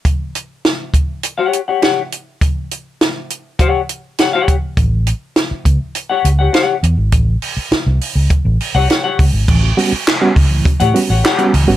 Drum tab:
CC |----------------|----------------|----------------|----------------|
HH |x-x-x-x-x-x-x-x-|x-x-x-x-x-x-x-x-|x-x-x-x-x-x-x-x-|x-o-x-o-x-o-x-o-|
CP |----------------|----------------|----------------|----------------|
SD |----o-------o---|----o-------o---|----o-------o---|----o-------o---|
BD |o-----o---------|o-------o-----o-|o-----o---------|o-------o-----o-|

CC |x---------------|
HH |--o-x-o-xxo-xxo-|
CP |----x-------x---|
SD |----o-------o---|
BD |o-----o-o-------|